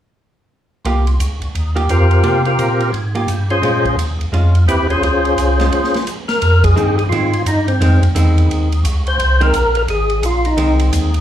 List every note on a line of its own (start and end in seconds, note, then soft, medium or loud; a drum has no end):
0.85 1.18 C2 medium
0.85 1.05 A#3 soft
0.85 1.05 F4 soft
0.85 1.05 G4 soft
0.85 ride soft
1.07 ride soft
1.20 1.40 C#2 medium
1.20 hi-hat pedal medium
1.20 ride soft
1.42 1.48 C#2 soft
1.42 ride soft
1.55 1.88 D#2 medium
1.55 ride soft
1.76 1.88 A#3 soft
1.76 1.88 F4 soft
1.76 1.88 G4 medium
1.76 ride soft
1.89 2.23 F2 medium
1.89 2.42 C4 soft
1.89 2.42 F4 soft
1.89 2.42 G4 soft
1.89 2.42 A#4 soft
1.89 hi-hat pedal soft
1.89 ride soft
2.11 ride soft
2.23 2.57 C3 medium
2.23 2.43 A#3 soft
2.23 2.43 F4 soft
2.23 2.44 G4 medium
2.23 ride soft
2.45 2.91 C4 soft
2.45 2.91 F4 soft
2.45 2.91 G4 soft
2.45 2.92 A#4 soft
2.45 ride soft
2.59 2.92 A#2 medium
2.59 hi-hat pedal soft
2.59 ride medium
2.80 ride soft
2.93 3.27 G#2 medium
2.93 ride soft
3.15 3.27 A#3 soft
3.15 3.27 F4 soft
3.15 3.28 G4 soft
3.15 ride soft
3.28 3.62 G2 medium
3.28 hi-hat pedal soft
3.28 ride soft
3.50 3.96 C#4 soft
3.50 3.96 F4 soft
3.50 3.96 G#4 soft
3.50 3.96 C5 soft
3.50 ride soft
3.62 3.96 A#2 medium
3.62 3.83 G#3 soft
3.62 3.83 C#4 soft
3.62 3.83 F4 soft
3.62 ride soft
3.85 kick soft
3.85 ride soft
3.97 4.18 D#2 medium
3.97 hi-hat pedal soft
3.97 ride medium
4.19 4.26 D#2 soft
4.19 ride soft
4.32 4.66 F2 medium
4.32 4.52 G#3 soft
4.32 4.53 C#4 soft
4.32 4.53 F4 soft
4.32 ride soft
4.55 ride soft
4.67 4.87 D#2 medium
4.67 4.87 C4 medium
4.67 4.88 E4 soft
4.67 4.88 G4 soft
4.67 4.88 B4 medium
4.67 hi-hat pedal soft
4.67 ride soft
4.89 4.96 D#2 soft
4.89 5.03 C#4 soft
4.89 5.03 F4 soft
4.89 5.03 G#4 soft
4.89 5.03 C5 medium
4.89 ride soft
5.01 5.36 C#2 medium
5.01 6.00 C#4 medium
5.01 6.00 F4 medium
5.01 6.00 G#4 soft
5.01 6.00 C5 medium
5.01 ride soft
5.25 ride soft
5.37 5.71 C2 medium
5.37 hi-hat pedal medium
5.37 ride medium
5.60 5.71 G#3 soft
5.60 5.72 C#4 soft
5.60 5.72 F4 soft
5.60 snare soft
5.60 ride soft
5.72 ride soft
5.84 snare soft
5.94 snare soft
5.94 ride soft
6.07 hi-hat pedal medium
6.07 ride soft
6.28 6.64 A#4 medium
6.28 snare soft
6.28 ride soft
6.42 6.76 F2 medium
6.42 ride medium
6.64 6.96 G#4 medium
6.64 kick medium
6.64 ride medium
6.76 7.10 G2 medium
6.76 6.96 D#3 medium
6.76 6.96 G#3 medium
6.76 6.97 C4 medium
6.76 hi-hat pedal medium
6.98 7.04 G#4 medium
6.98 ride soft
7.09 7.45 G#2 medium
7.09 7.31 D#3 soft
7.09 7.31 G#3 soft
7.09 7.32 C4 medium
7.09 7.43 F4 medium
7.09 ride soft
7.33 ride soft
7.46 7.80 G2 medium
7.46 7.67 D#4 medium
7.46 hi-hat pedal medium
7.46 ride medium
7.68 8.00 C4 medium
7.68 ride soft
7.81 8.01 F2 medium
7.81 8.00 D#3 medium
7.81 8.01 G#3 medium
7.81 8.01 C4 medium
7.81 ride medium
8.02 8.09 F2 soft
8.02 ride soft
8.15 8.49 E2 medium
8.15 8.67 D#3 medium
8.15 8.68 G#3 medium
8.15 8.68 C4 medium
8.15 hi-hat pedal medium
8.15 ride medium
8.38 ride soft
8.49 8.83 D#2 medium
8.49 ride soft
8.72 ride soft
8.84 9.18 C#2 medium
8.84 hi-hat pedal soft
8.84 ride medium
9.07 9.43 C5 medium
9.07 ride soft
9.18 9.52 C2 medium
9.18 ride medium
9.41 9.52 D#3 medium
9.41 9.53 G#3 medium
9.41 9.53 C4 medium
9.41 9.76 A#4 loud
9.41 ride soft
9.53 9.87 A#1 medium
9.53 hi-hat pedal medium
9.53 ride medium
9.75 9.82 A#4 medium
9.75 ride soft
9.88 10.22 G#1 medium
9.88 10.25 G#4 medium
9.88 ride soft
10.10 ride soft
10.23 10.56 A#1 medium
10.23 10.47 F4 medium
10.23 hi-hat pedal medium
10.23 ride medium
10.45 10.78 D#4 medium
10.45 ride soft
10.56 10.90 C2 medium
10.56 11.09 D#3 medium
10.56 11.10 G#3 medium
10.56 11.10 C4 medium
10.56 ride medium
10.79 ride soft
10.92 11.21 D#2 medium
10.92 hi-hat pedal medium
10.92 ride medium
11.14 ride soft